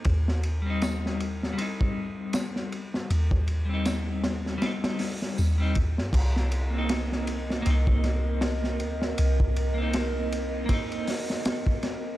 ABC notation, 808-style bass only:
X:1
M:4/4
L:1/16
Q:"Swing 16ths" 1/4=79
K:Cm
V:1 name="808-style bass" clef=bass
E,,8 z8 | E,,8 z4 E,,3 G,, | C,,8 C,,6 D,,2 | C,,8 z8 |]